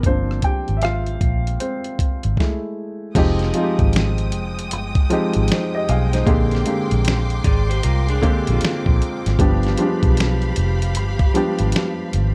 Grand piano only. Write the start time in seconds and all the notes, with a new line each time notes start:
0.06 F3 A#3 C4 D4 C5
0.44 G4 G5
0.77 E5
0.83 F4 F5
1.60 C4 C5
2.39 G#3 A3 E4
3.15 F3 G#3 C4 D#4 G4
3.54 F3 G#3 C4 D#4 F4
3.63 G4
5.10 F3 G#3 C4 D#4 G4
5.51 D#4 C5
5.75 G4 D#5
5.89 G#4 F5
6.13 D#4 C5
6.26 D3 G#3 A#3 C4 G4
6.65 D3 G#3 A#3 C4 G4
8.22 D3 G#3 A#3 C4 G4
9.39 F3 G3 B3 D4 G4
9.78 F3 G3 G#3 D4 G4
9.86 B3
11.34 F3 G3 B3 D4 G4